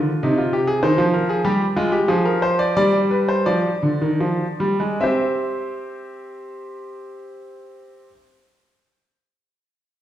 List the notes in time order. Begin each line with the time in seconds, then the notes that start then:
Already playing: D3 F4
0.23 C3 D#4
0.38 F4
0.53 G4
0.67 G#4
0.83 D#3 C5
0.98 F3
1.13 A#4
1.29 G#4
1.45 G3 G4
1.76 G#3 F4
1.92 G4
2.08 F3 G#4
2.25 A#4
2.42 C5
2.59 D5
2.77 G3 D5
3.11 B4
3.29 C5
3.46 F3 D5
3.83 D3
4.02 D#3
4.20 F3
4.60 G3
4.80 G#3
5.00 C4 G4 C5 E5